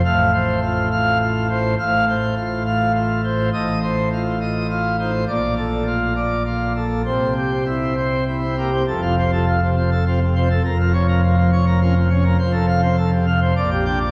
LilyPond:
<<
  \new Staff \with { instrumentName = "Pipe organ" } { \time 3/4 \key f \major \tempo 4 = 103 f''8 c''8 f'8 f''8 f'8 c''8 | f''8 c''8 f'8 f''8 f'8 c''8 | ees''8 c''8 f'8 ees''8 f'8 c''8 | d''8 a'8 f'8 d''8 f'8 a'8 |
c''8 g'8 e'8 c''8 e'8 g'8 | a'16 f'16 c''16 a'16 f'16 c16 c''16 a'16 f'16 c16 c''16 a'16 | bes'16 f'16 des''16 bes'16 f'16 f16 des''16 bes'16 f'16 f16 des''16 bes'16 | c''16 a'16 f''16 c''16 a'16 c16 f''16 c''16 d''16 g'16 g''16 d''16 | }
  \new Staff \with { instrumentName = "Pipe organ" } { \clef bass \time 3/4 \key f \major << { a,2. | a,2. | a,2~ a,8 ees'16 r16 | bes,2. |
c8. c'16 r16 c'16 r8. c'16 bes16 c'16 | f,2 c'16 r16 c'16 r16 | f,2 des'16 r16 des'16 r16 | f,2 bes,8 d'16 r16 | } \\ { a,,2. | a,,2. | a,,2. | bes,,2. |
c,2. | f,,2. | f,,2. | f,,2 bes,,4 | } >> }
>>